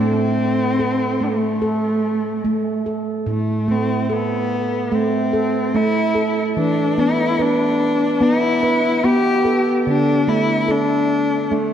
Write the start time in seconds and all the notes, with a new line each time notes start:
Already playing: A2 A3 C4
0.79 A4
1.21 A3
1.62 A4
2.45 A3
2.86 A4
3.26 A2
3.31 A3
3.68 A3 C4
4.05 C4
4.09 B3 A4
4.92 A3 C4
5.33 A4
5.74 A3 E4
6.15 A4
6.57 E3 D4
6.98 B3 E4
7.39 D4 B4
8.21 B3 E4
8.63 B4
9.04 B3 G4
9.45 A4
9.87 D3 D4
10.28 A3 E4
10.68 D4 A4
11.51 A3